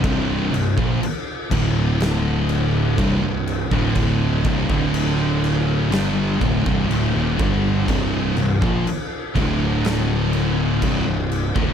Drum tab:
CC |x-x-x-x-x-x-x-x-|x-x-x-x-x-x-x-x-|x-x-x-x-x-x-x-x-|
SD |--------o-------|--------o-------|--------o-------|
BD |o--o--o-----o--o|o-oo------oo--o-|o--o--o-----o--o|